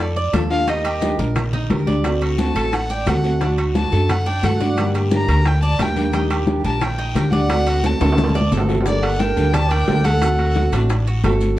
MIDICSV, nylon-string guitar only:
0, 0, Header, 1, 3, 480
1, 0, Start_track
1, 0, Tempo, 340522
1, 963, Time_signature, 4, 2, 24, 8
1, 16339, End_track
2, 0, Start_track
2, 0, Title_t, "Nylon-string guitar"
2, 0, Program_c, 0, 24
2, 465, Note_on_c, 0, 53, 55
2, 479, Note_on_c, 0, 57, 53
2, 491, Note_on_c, 0, 62, 53
2, 496, Note_on_c, 0, 65, 60
2, 691, Note_off_c, 0, 65, 0
2, 704, Note_off_c, 0, 53, 0
2, 708, Note_on_c, 0, 65, 75
2, 709, Note_off_c, 0, 62, 0
2, 711, Note_off_c, 0, 57, 0
2, 726, Note_on_c, 0, 62, 67
2, 738, Note_on_c, 0, 57, 55
2, 941, Note_on_c, 0, 51, 55
2, 946, Note_off_c, 0, 57, 0
2, 946, Note_off_c, 0, 65, 0
2, 951, Note_on_c, 0, 55, 58
2, 955, Note_off_c, 0, 62, 0
2, 974, Note_on_c, 0, 67, 71
2, 1413, Note_off_c, 0, 51, 0
2, 1425, Note_off_c, 0, 55, 0
2, 1430, Note_on_c, 0, 51, 76
2, 1440, Note_off_c, 0, 67, 0
2, 1441, Note_on_c, 0, 55, 75
2, 1449, Note_on_c, 0, 62, 81
2, 1461, Note_on_c, 0, 67, 94
2, 1656, Note_off_c, 0, 67, 0
2, 1668, Note_off_c, 0, 51, 0
2, 1673, Note_on_c, 0, 67, 44
2, 1674, Note_off_c, 0, 55, 0
2, 1678, Note_off_c, 0, 62, 0
2, 1694, Note_on_c, 0, 62, 47
2, 1704, Note_on_c, 0, 55, 43
2, 1899, Note_off_c, 0, 55, 0
2, 1904, Note_off_c, 0, 62, 0
2, 1910, Note_off_c, 0, 67, 0
2, 2395, Note_on_c, 0, 51, 54
2, 2403, Note_on_c, 0, 55, 60
2, 2415, Note_on_c, 0, 62, 53
2, 2422, Note_on_c, 0, 67, 59
2, 2616, Note_off_c, 0, 67, 0
2, 2631, Note_off_c, 0, 51, 0
2, 2633, Note_on_c, 0, 67, 73
2, 2636, Note_off_c, 0, 55, 0
2, 2636, Note_off_c, 0, 62, 0
2, 2653, Note_on_c, 0, 62, 67
2, 2668, Note_on_c, 0, 55, 61
2, 2871, Note_off_c, 0, 67, 0
2, 2880, Note_on_c, 0, 50, 61
2, 2881, Note_off_c, 0, 62, 0
2, 2884, Note_off_c, 0, 55, 0
2, 2890, Note_on_c, 0, 57, 66
2, 2899, Note_on_c, 0, 60, 70
2, 2909, Note_on_c, 0, 66, 69
2, 3340, Note_off_c, 0, 50, 0
2, 3355, Note_off_c, 0, 57, 0
2, 3357, Note_on_c, 0, 50, 72
2, 3364, Note_off_c, 0, 60, 0
2, 3369, Note_off_c, 0, 66, 0
2, 3372, Note_on_c, 0, 57, 80
2, 3385, Note_on_c, 0, 60, 81
2, 3390, Note_on_c, 0, 66, 93
2, 3577, Note_off_c, 0, 66, 0
2, 3593, Note_off_c, 0, 50, 0
2, 3594, Note_on_c, 0, 66, 42
2, 3595, Note_off_c, 0, 60, 0
2, 3601, Note_off_c, 0, 57, 0
2, 3612, Note_on_c, 0, 60, 38
2, 3624, Note_on_c, 0, 57, 38
2, 3827, Note_off_c, 0, 57, 0
2, 3832, Note_off_c, 0, 66, 0
2, 3834, Note_off_c, 0, 60, 0
2, 4321, Note_on_c, 0, 50, 55
2, 4328, Note_on_c, 0, 57, 56
2, 4342, Note_on_c, 0, 60, 57
2, 4350, Note_on_c, 0, 66, 62
2, 4548, Note_off_c, 0, 66, 0
2, 4556, Note_off_c, 0, 50, 0
2, 4559, Note_off_c, 0, 57, 0
2, 4565, Note_on_c, 0, 66, 67
2, 4566, Note_off_c, 0, 60, 0
2, 4583, Note_on_c, 0, 60, 62
2, 4597, Note_on_c, 0, 57, 62
2, 4798, Note_off_c, 0, 57, 0
2, 4798, Note_off_c, 0, 66, 0
2, 4804, Note_on_c, 0, 50, 66
2, 4807, Note_off_c, 0, 60, 0
2, 4815, Note_on_c, 0, 57, 60
2, 4826, Note_on_c, 0, 62, 76
2, 4838, Note_on_c, 0, 66, 75
2, 5259, Note_off_c, 0, 50, 0
2, 5273, Note_off_c, 0, 57, 0
2, 5275, Note_on_c, 0, 50, 71
2, 5280, Note_off_c, 0, 62, 0
2, 5290, Note_on_c, 0, 57, 75
2, 5295, Note_off_c, 0, 66, 0
2, 5297, Note_on_c, 0, 62, 78
2, 5310, Note_on_c, 0, 66, 81
2, 5502, Note_off_c, 0, 66, 0
2, 5513, Note_off_c, 0, 50, 0
2, 5514, Note_off_c, 0, 62, 0
2, 5519, Note_on_c, 0, 66, 51
2, 5520, Note_off_c, 0, 57, 0
2, 5531, Note_on_c, 0, 62, 44
2, 5545, Note_on_c, 0, 57, 37
2, 5755, Note_off_c, 0, 57, 0
2, 5755, Note_off_c, 0, 66, 0
2, 5758, Note_off_c, 0, 62, 0
2, 6237, Note_on_c, 0, 50, 50
2, 6250, Note_on_c, 0, 57, 52
2, 6258, Note_on_c, 0, 62, 59
2, 6265, Note_on_c, 0, 66, 62
2, 6464, Note_off_c, 0, 66, 0
2, 6474, Note_off_c, 0, 50, 0
2, 6480, Note_off_c, 0, 62, 0
2, 6481, Note_off_c, 0, 57, 0
2, 6481, Note_on_c, 0, 66, 62
2, 6497, Note_on_c, 0, 62, 68
2, 6509, Note_on_c, 0, 57, 64
2, 6716, Note_off_c, 0, 66, 0
2, 6719, Note_on_c, 0, 50, 61
2, 6724, Note_off_c, 0, 62, 0
2, 6727, Note_on_c, 0, 55, 74
2, 6730, Note_off_c, 0, 57, 0
2, 6737, Note_on_c, 0, 58, 67
2, 6743, Note_on_c, 0, 62, 67
2, 6750, Note_on_c, 0, 67, 69
2, 7181, Note_off_c, 0, 50, 0
2, 7192, Note_off_c, 0, 55, 0
2, 7198, Note_on_c, 0, 50, 77
2, 7200, Note_off_c, 0, 58, 0
2, 7201, Note_off_c, 0, 62, 0
2, 7209, Note_on_c, 0, 55, 77
2, 7210, Note_off_c, 0, 67, 0
2, 7217, Note_on_c, 0, 58, 77
2, 7218, Note_on_c, 0, 62, 76
2, 7230, Note_on_c, 0, 67, 90
2, 7423, Note_off_c, 0, 67, 0
2, 7434, Note_off_c, 0, 50, 0
2, 7439, Note_off_c, 0, 62, 0
2, 7440, Note_off_c, 0, 55, 0
2, 7440, Note_on_c, 0, 67, 51
2, 7444, Note_off_c, 0, 58, 0
2, 7472, Note_on_c, 0, 58, 43
2, 7674, Note_off_c, 0, 58, 0
2, 7675, Note_off_c, 0, 67, 0
2, 8162, Note_on_c, 0, 55, 56
2, 8174, Note_on_c, 0, 58, 57
2, 8187, Note_on_c, 0, 62, 58
2, 8189, Note_on_c, 0, 67, 57
2, 8376, Note_off_c, 0, 67, 0
2, 8391, Note_off_c, 0, 62, 0
2, 8393, Note_on_c, 0, 67, 79
2, 8396, Note_off_c, 0, 55, 0
2, 8402, Note_off_c, 0, 58, 0
2, 8407, Note_on_c, 0, 62, 61
2, 8418, Note_on_c, 0, 58, 67
2, 8424, Note_on_c, 0, 55, 63
2, 8625, Note_off_c, 0, 55, 0
2, 8631, Note_off_c, 0, 67, 0
2, 8631, Note_on_c, 0, 51, 74
2, 8638, Note_off_c, 0, 58, 0
2, 8638, Note_off_c, 0, 62, 0
2, 8643, Note_on_c, 0, 55, 75
2, 8654, Note_on_c, 0, 62, 77
2, 8661, Note_on_c, 0, 67, 77
2, 9089, Note_off_c, 0, 51, 0
2, 9098, Note_off_c, 0, 55, 0
2, 9106, Note_on_c, 0, 51, 72
2, 9111, Note_off_c, 0, 62, 0
2, 9115, Note_on_c, 0, 55, 80
2, 9120, Note_off_c, 0, 67, 0
2, 9128, Note_on_c, 0, 62, 91
2, 9136, Note_on_c, 0, 67, 81
2, 9337, Note_off_c, 0, 67, 0
2, 9347, Note_off_c, 0, 51, 0
2, 9351, Note_off_c, 0, 62, 0
2, 9352, Note_off_c, 0, 55, 0
2, 9354, Note_on_c, 0, 67, 47
2, 9368, Note_on_c, 0, 62, 40
2, 9386, Note_on_c, 0, 55, 40
2, 9583, Note_off_c, 0, 55, 0
2, 9585, Note_off_c, 0, 62, 0
2, 9591, Note_off_c, 0, 67, 0
2, 10073, Note_on_c, 0, 51, 48
2, 10081, Note_on_c, 0, 55, 60
2, 10094, Note_on_c, 0, 62, 63
2, 10101, Note_on_c, 0, 67, 68
2, 10304, Note_off_c, 0, 67, 0
2, 10310, Note_off_c, 0, 51, 0
2, 10314, Note_off_c, 0, 55, 0
2, 10321, Note_off_c, 0, 62, 0
2, 10321, Note_on_c, 0, 67, 81
2, 10338, Note_on_c, 0, 62, 77
2, 10347, Note_on_c, 0, 55, 64
2, 10554, Note_off_c, 0, 67, 0
2, 10557, Note_on_c, 0, 50, 72
2, 10563, Note_off_c, 0, 62, 0
2, 10564, Note_off_c, 0, 55, 0
2, 10570, Note_on_c, 0, 57, 79
2, 10578, Note_on_c, 0, 60, 64
2, 10588, Note_on_c, 0, 66, 79
2, 11019, Note_off_c, 0, 50, 0
2, 11032, Note_off_c, 0, 57, 0
2, 11036, Note_on_c, 0, 50, 82
2, 11042, Note_off_c, 0, 60, 0
2, 11047, Note_off_c, 0, 66, 0
2, 11049, Note_on_c, 0, 57, 75
2, 11057, Note_on_c, 0, 60, 78
2, 11069, Note_on_c, 0, 66, 91
2, 11261, Note_off_c, 0, 66, 0
2, 11271, Note_off_c, 0, 50, 0
2, 11278, Note_off_c, 0, 57, 0
2, 11278, Note_on_c, 0, 66, 51
2, 11282, Note_off_c, 0, 60, 0
2, 11296, Note_on_c, 0, 60, 43
2, 11311, Note_on_c, 0, 57, 37
2, 11510, Note_off_c, 0, 57, 0
2, 11512, Note_off_c, 0, 66, 0
2, 11518, Note_off_c, 0, 60, 0
2, 11999, Note_on_c, 0, 50, 60
2, 12008, Note_on_c, 0, 57, 54
2, 12021, Note_on_c, 0, 60, 60
2, 12031, Note_on_c, 0, 66, 58
2, 12219, Note_off_c, 0, 66, 0
2, 12232, Note_off_c, 0, 50, 0
2, 12236, Note_on_c, 0, 66, 71
2, 12237, Note_off_c, 0, 57, 0
2, 12238, Note_off_c, 0, 60, 0
2, 12255, Note_on_c, 0, 60, 60
2, 12268, Note_on_c, 0, 57, 65
2, 12471, Note_off_c, 0, 66, 0
2, 12478, Note_on_c, 0, 50, 68
2, 12480, Note_off_c, 0, 60, 0
2, 12487, Note_off_c, 0, 57, 0
2, 12489, Note_on_c, 0, 55, 74
2, 12494, Note_on_c, 0, 58, 77
2, 12500, Note_on_c, 0, 62, 64
2, 12510, Note_on_c, 0, 69, 77
2, 12942, Note_off_c, 0, 55, 0
2, 12951, Note_off_c, 0, 50, 0
2, 12954, Note_off_c, 0, 58, 0
2, 12959, Note_on_c, 0, 55, 51
2, 12962, Note_off_c, 0, 62, 0
2, 12967, Note_off_c, 0, 69, 0
2, 12971, Note_on_c, 0, 58, 56
2, 12981, Note_on_c, 0, 62, 49
2, 12987, Note_on_c, 0, 69, 55
2, 13180, Note_off_c, 0, 69, 0
2, 13190, Note_off_c, 0, 62, 0
2, 13191, Note_off_c, 0, 55, 0
2, 13197, Note_on_c, 0, 69, 67
2, 13198, Note_off_c, 0, 58, 0
2, 13207, Note_on_c, 0, 62, 62
2, 13218, Note_on_c, 0, 58, 61
2, 13228, Note_on_c, 0, 55, 53
2, 13431, Note_off_c, 0, 69, 0
2, 13434, Note_off_c, 0, 55, 0
2, 13435, Note_off_c, 0, 62, 0
2, 13436, Note_off_c, 0, 58, 0
2, 13930, Note_on_c, 0, 55, 53
2, 13942, Note_on_c, 0, 58, 51
2, 13951, Note_on_c, 0, 62, 56
2, 13959, Note_on_c, 0, 69, 62
2, 14392, Note_off_c, 0, 55, 0
2, 14398, Note_on_c, 0, 50, 69
2, 14403, Note_off_c, 0, 58, 0
2, 14407, Note_off_c, 0, 62, 0
2, 14409, Note_on_c, 0, 57, 68
2, 14411, Note_off_c, 0, 69, 0
2, 14416, Note_on_c, 0, 60, 67
2, 14428, Note_on_c, 0, 66, 73
2, 14865, Note_off_c, 0, 50, 0
2, 14876, Note_off_c, 0, 57, 0
2, 14880, Note_off_c, 0, 60, 0
2, 14882, Note_on_c, 0, 50, 48
2, 14885, Note_off_c, 0, 66, 0
2, 14891, Note_on_c, 0, 57, 61
2, 14902, Note_on_c, 0, 60, 57
2, 14910, Note_on_c, 0, 66, 58
2, 15101, Note_off_c, 0, 66, 0
2, 15112, Note_off_c, 0, 50, 0
2, 15117, Note_off_c, 0, 57, 0
2, 15118, Note_off_c, 0, 60, 0
2, 15118, Note_on_c, 0, 66, 68
2, 15135, Note_on_c, 0, 60, 58
2, 15148, Note_on_c, 0, 57, 59
2, 15350, Note_off_c, 0, 66, 0
2, 15357, Note_off_c, 0, 57, 0
2, 15359, Note_off_c, 0, 60, 0
2, 15843, Note_on_c, 0, 50, 58
2, 15855, Note_on_c, 0, 57, 52
2, 15866, Note_on_c, 0, 60, 57
2, 15870, Note_on_c, 0, 66, 61
2, 16296, Note_off_c, 0, 50, 0
2, 16318, Note_off_c, 0, 57, 0
2, 16324, Note_off_c, 0, 60, 0
2, 16326, Note_off_c, 0, 66, 0
2, 16339, End_track
3, 0, Start_track
3, 0, Title_t, "Muted nylon-string guitar strokes"
3, 1, Note_on_c, 9, 29, 63
3, 142, Note_off_c, 9, 29, 0
3, 1909, Note_on_c, 9, 29, 63
3, 2050, Note_off_c, 9, 29, 0
3, 3839, Note_on_c, 9, 29, 62
3, 3980, Note_off_c, 9, 29, 0
3, 5765, Note_on_c, 9, 29, 62
3, 5906, Note_off_c, 9, 29, 0
3, 7684, Note_on_c, 9, 29, 64
3, 7825, Note_off_c, 9, 29, 0
3, 9592, Note_on_c, 9, 29, 59
3, 9733, Note_off_c, 9, 29, 0
3, 11519, Note_on_c, 9, 29, 61
3, 11660, Note_off_c, 9, 29, 0
3, 13444, Note_on_c, 9, 29, 56
3, 13585, Note_off_c, 9, 29, 0
3, 16339, End_track
0, 0, End_of_file